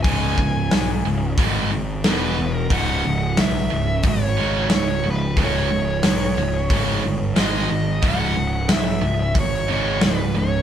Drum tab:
HH |o-o-o-o-|o-o-o-o-|o-o-o-o-|o-o-o-o-|
SD |--o---o-|--o---o-|--o---o-|--o---o-|
BD |oo--o---|o---o---|o---o---|o---o---|